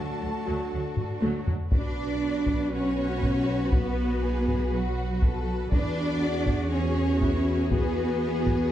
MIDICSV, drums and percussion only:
0, 0, Header, 1, 2, 480
1, 0, Start_track
1, 0, Tempo, 499002
1, 1666, Time_signature, 4, 2, 24, 8
1, 8387, End_track
2, 0, Start_track
2, 0, Title_t, "Taiko and cinematic ensemble drums"
2, 931, Note_on_c, 9, 45, 61
2, 1027, Note_off_c, 9, 45, 0
2, 1177, Note_on_c, 9, 48, 66
2, 1273, Note_off_c, 9, 48, 0
2, 1416, Note_on_c, 9, 43, 70
2, 1512, Note_off_c, 9, 43, 0
2, 1651, Note_on_c, 9, 41, 76
2, 1747, Note_off_c, 9, 41, 0
2, 2370, Note_on_c, 9, 41, 64
2, 2466, Note_off_c, 9, 41, 0
2, 3095, Note_on_c, 9, 41, 64
2, 3191, Note_off_c, 9, 41, 0
2, 3581, Note_on_c, 9, 41, 76
2, 3678, Note_off_c, 9, 41, 0
2, 4314, Note_on_c, 9, 41, 63
2, 4410, Note_off_c, 9, 41, 0
2, 5022, Note_on_c, 9, 41, 69
2, 5118, Note_off_c, 9, 41, 0
2, 5502, Note_on_c, 9, 41, 84
2, 5598, Note_off_c, 9, 41, 0
2, 6215, Note_on_c, 9, 41, 70
2, 6312, Note_off_c, 9, 41, 0
2, 6934, Note_on_c, 9, 41, 71
2, 7030, Note_off_c, 9, 41, 0
2, 7420, Note_on_c, 9, 41, 76
2, 7516, Note_off_c, 9, 41, 0
2, 8136, Note_on_c, 9, 41, 70
2, 8232, Note_off_c, 9, 41, 0
2, 8387, End_track
0, 0, End_of_file